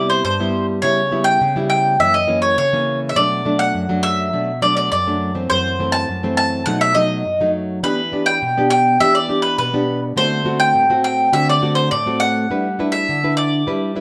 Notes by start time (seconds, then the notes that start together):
Already playing: C3 G3 B3 E4
0.10 C5
0.24 G2 C5
0.40 G3 B3 E4
0.82 C#3 G3 B3 E4 C#5
1.11 G3 B3 E4
1.24 G5
1.41 C#3
1.56 G3 B3 E4
1.70 G5
2.00 F#2 E3 A#3 C#4 E5
2.14 D#5
2.28 E3 A#3 C#4
2.42 C#5
2.58 C#3 C#5
2.73 E3 A#3 C#4
3.09 E5
3.16 B2 F#3 A3 D4 D5
3.45 F#3 A3 D4
3.59 F#5
3.74 F#2
3.89 F#3 A3 D4
4.03 E5
4.33 B2 F#3 A3 D4
4.62 F#3 A3 D4 D5
4.77 D5
4.92 F#2 D5
5.07 F#3 A3 D4
5.35 E3 A3 C4
5.50 F#2 C5
5.80 E3 A3 C4
5.92 A5
6.09 F#2
6.23 E3 A3 C4
6.37 A5
6.66 B2 F#3 A3 D#4 F#5
6.81 E5
6.95 F#3 A3 D#4 D#5
7.25 F#2
7.41 F#3 A3 D#4
7.83 E3 B3 D4 G4 B4
8.12 B3 D4 G4
8.26 G5
8.42 B2
8.57 B3 D4 G4
8.70 G5
9.00 E3 B3 D4 G4 E5
9.15 D5
9.29 B3 D4 G4
9.42 B4
9.58 B2 B4
9.73 B3 D4 G4
10.16 D3 A3 C4 F#4 C5
10.45 A3 C4 F#4
10.60 G5
10.75 A2
10.90 A3 C4 F#4
11.04 G5
11.33 D3 A3 C4 F#4 E5
11.49 D5
11.62 A3 C4 F#4
11.75 C5
11.91 A2 D5
12.06 A3 C4 F#4
12.20 F#5
12.50 G3 D4 E4 B4
12.79 D4 E4 B4
12.92 E5
13.09 D3
13.23 D4 E4 B4
13.37 D5
13.67 G3 D4 E4 B4
13.96 D4 E4 B4